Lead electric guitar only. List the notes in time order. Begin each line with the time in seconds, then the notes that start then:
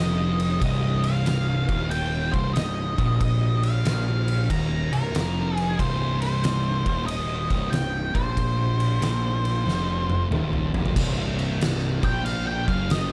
Already playing: D#5
0.60 D#5
1.04 F5
1.90 G5
2.32 C5
2.53 D#5
3.20 D#5
3.64 F5
4.51 A#5
4.93 A#4
5.56 G#4
5.79 C5
6.21 C5
7.06 D#5
7.70 G5
8.14 C5
12.05 G5
12.25 F5
12.47 G5
12.68 F5
12.91 D#5